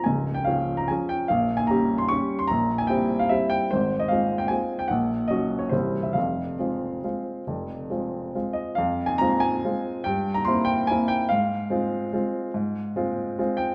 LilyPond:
\new Staff \with { instrumentName = "Upright piano" } { \time 3/4 \key f \minor \tempo 4 = 144 << { aes''8. g''16 f''8. bes''16 aes''8 g''8 | f''8. aes''16 bes''8. c'''16 des'''8. c'''16 | bes''8. aes''16 g''8. f''16 e''8 g''8 | c''8. ees''16 f''8. g''16 aes''8. g''16 |
ges''4 ees''8. des''16 c''8. e''16 | f''2.~ | f''2 r8 ees''8 | f''8. aes''16 bes''8 aes''4. |
g''8. bes''16 c'''8 g''8 aes''8 g''8 | f''2.~ | f''2 r8 g''8 | } \\ { <des,, des,>4 <f des' aes'>4 <f des' aes'>4 | <bes,, bes,>4 <g des' g'>4 <g des' g'>4 | <bes,, bes,>4 <g c' e'>4 <g c' e'>4 | <aes,, aes,>4 <aes c' f'>4 <aes c' f'>4 |
<bes,, bes,>4 <ges des' ges'>4 <c,, c, g c' e'>4 | <f,, f,>4 <aes c' f'>4 <aes c' f'>4 | <f,, f,>4 <aes c' f'>4 <aes c' f'>4 | f,4 <aes c' f'>4 <aes c' f'>4 |
g,4 <bes c' e'>4 <bes c' e'>4 | aes,4 <aes c' f'>4 <aes c' f'>4 | aes,4 <aes c' f'>4 <aes c' f'>4 | } >> }